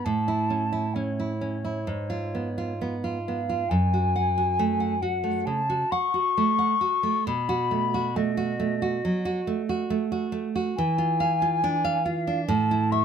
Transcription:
0.04 A2 A5
0.28 E4
0.50 C#4
0.73 E4
0.94 C#4 C#5
1.20 E4
1.41 C#4
1.65 E4
1.87 G#2
2.10 F4
2.35 B3
2.58 F4
2.81 B3
3.04 F4
3.24 B3 F5
3.49 F4
3.69 F#2 G#5
3.94 F#4
4.16 F#5
4.38 F#4
4.59 A3
4.80 F#5
5.02 F#4 F#5
5.24 A3
5.45 C#3 A5
5.70 F#4
5.91 F#5 C#6
6.14 F#4
6.37 A3
6.59 F#5
6.81 F#4
7.03 A3
7.27 B2 B5
7.49 F#4
7.71 A3
7.94 F#4
8.16 A3 D#5
8.37 F#4
8.60 A3
8.82 F#4
9.05 F#3
9.25 F#4
9.47 A3
9.69 F#4
9.90 A3
10.12 F#4
10.32 A3
10.56 F#4
10.76 E3 G#5
10.98 F4
11.20 F5
11.42 F4
11.64 D4
11.85 F5
12.05 F4 F5
12.27 D4
12.48 A2 A5
12.71 E4
12.91 E5 C#6

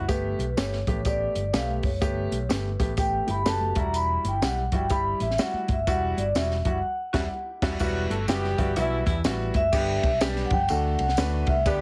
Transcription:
0.08 G1 A3 B3 G4 B4, kick, closed hi-hat, tambourine
0.39 B1, closed hi-hat, muted conga
0.57 G1 A3 B3 G4 C#5, snare, closed hi-hat, tambourine, high conga
0.73 snare
0.87 A1 A3 B3 G4, kick, closed hi-hat, low conga
1.05 A3 B3 G4 D5, kick, closed hi-hat, tambourine
1.35 G1, closed hi-hat, muted conga
1.53 B1 A3 B3 G4 F5, snare, closed hi-hat, tambourine, high conga
1.69 high conga
1.83 F#1 C#5, kick, open hi-hat, high conga
2.01 G1 A3 B3 G4, kick, closed hi-hat, tambourine
2.32 B1, closed hi-hat, muted conga
2.49 G1 A3 B3 G4 B4, snare, closed hi-hat, tambourine, high conga
2.79 A1 A3 B3 G4, kick, closed hi-hat, muted conga, low conga
2.97 A3 B3 G4 G5, kick, closed hi-hat, tambourine
3.28 G1 E4 G4 B5, closed hi-hat, muted conga
3.46 F#1 A3 B3 F#4 G4 A4 A5, snare, closed hi-hat, tambourine, high conga
3.61 high conga
3.75 E1 G3 E4 F#4, kick, closed hi-hat, high conga
3.79 A#5
3.94 B5, closed hi-hat, tambourine
4.24 G1, closed hi-hat, muted conga
4.28 G5
4.42 B1 G3 E4 G4 F#5, snare, closed hi-hat, tambourine, high conga
4.72 G1 G3 E4 F#4 G5, kick, closed hi-hat, muted conga, low conga
4.90 G3 E4 G4 B5, kick, closed hi-hat, tambourine
5.20 A1 E5, closed hi-hat, muted conga
5.31 snare
5.38 G3 E4 F#4 F#5, snare, closed hi-hat, tambourine, high conga
5.54 muted picked electric bass stroke, high conga
5.68 G1, kick, closed hi-hat, high conga
5.73 E5
5.87 E1 G3 E4 F#4 F#5, kick, closed hi-hat, tambourine
6.17 G1 D5, closed hi-hat, muted conga
6.35 E1 G3 E4 F#4 E5, snare, closed hi-hat, tambourine, high conga
6.51 snare
6.65 F#1 G3 E4 F#4, kick, closed hi-hat, muted conga, low conga
6.70 F#5
7.13 E1 B2 F#3 G3 E4 F#4 G4, kick, snare, crash
7.62 E1 B2 F#3 G3 E4 F#4, kick, snare, crash
7.80 E1 B2 F#3 G3 B3 E4 F#4, kick, crash, tambourine
8.10 G1 A3 F#4 A4, closed hi-hat, muted conga
8.28 F#1 E3 G3 B3 E4 F#4 G4, snare, closed hi-hat, tambourine, high conga
8.44 snare
8.58 G1 G3 B3 E4 F#4, kick, closed hi-hat, low conga
8.76 B1 B2 E3 G3 B3 E4 F#4, closed hi-hat, tambourine, low conga
9.06 E2 B2 E3 G3 E4, kick, closed hi-hat, muted conga
9.24 A1 G3 B3 E4 F#4, snare, closed hi-hat, tambourine, high conga
9.54 F#1 E5, kick, closed hi-hat, high conga
9.73 G1 D3 G3 B3 D4 G4, kick, crash, tambourine
10.03 B1, kick, ride, muted conga
10.21 G3 B3 D4 G4, snare, ride, tambourine, high conga
10.36 snare
10.46 F#5
10.50 G1 G5, kick, ride, low conga
10.69 D2 A3 D4 F#4 A4 F#5, ride, tambourine
10.99 C2, ride, muted conga
11.09 snare
11.17 D2 A3 D4 F#4 B4, snare, ride, tambourine, high conga
11.47 C2 E5, kick, ride, high conga
11.66 D2 D3 G3 B3 D4 G4 B4 D5, kick, ride, tambourine

